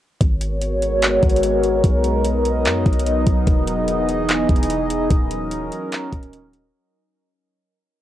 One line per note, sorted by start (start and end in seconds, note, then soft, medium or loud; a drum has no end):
0.21 1.19 G#1 loud
0.21 1.82 G#3 medium
0.21 1.82 B3 medium
0.21 1.82 F#4 medium
0.21 3.44 A#4 medium
0.21 1.82 C#5 medium
0.21 kick loud
0.21 closed hi-hat medium
0.41 closed hi-hat medium
0.61 closed hi-hat medium
0.82 closed hi-hat medium
1.02 clap loud
1.02 closed hi-hat medium
1.23 1.82 G#1 loud
1.23 kick loud
1.23 closed hi-hat soft
1.29 closed hi-hat medium
1.36 closed hi-hat medium
1.43 closed hi-hat medium
1.63 closed hi-hat medium
1.84 2.67 B1 loud
1.84 3.45 F#3 medium
1.84 5.07 B3 medium
1.84 6.70 D#4 medium
1.84 3.46 D#5 medium
1.84 kick loud
1.84 closed hi-hat medium
2.04 closed hi-hat medium
2.25 closed hi-hat medium
2.45 closed hi-hat medium
2.65 2.85 F#2 medium
2.65 clap loud
2.65 closed hi-hat medium
2.86 3.25 B1 loud
2.86 kick loud
2.86 closed hi-hat soft
2.93 closed hi-hat medium
3.00 closed hi-hat medium
3.07 closed hi-hat medium
3.27 3.46 B1 loud
3.27 kick loud
3.27 closed hi-hat medium
3.47 4.45 E1 loud
3.47 5.09 E3 medium
3.47 5.09 G#4 medium
3.47 6.70 D#5 medium
3.47 kick loud
3.47 closed hi-hat medium
3.67 closed hi-hat medium
3.88 closed hi-hat medium
4.09 closed hi-hat medium
4.29 clap loud
4.29 closed hi-hat medium
4.49 5.08 E1 loud
4.49 kick loud
4.49 closed hi-hat soft
4.56 closed hi-hat medium
4.63 closed hi-hat medium
4.70 closed hi-hat medium
4.90 closed hi-hat medium
5.10 5.69 D#1 loud
5.10 6.72 F#3 medium
5.10 6.72 C#4 medium
5.10 6.72 A#4 medium
5.10 kick loud
5.10 closed hi-hat medium
5.31 closed hi-hat medium
5.51 closed hi-hat medium
5.72 closed hi-hat medium
5.92 clap loud
5.92 closed hi-hat medium
6.13 6.71 D#1 loud
6.13 kick loud
6.13 closed hi-hat medium
6.23 closed hi-hat medium
6.33 closed hi-hat medium
6.53 closed hi-hat medium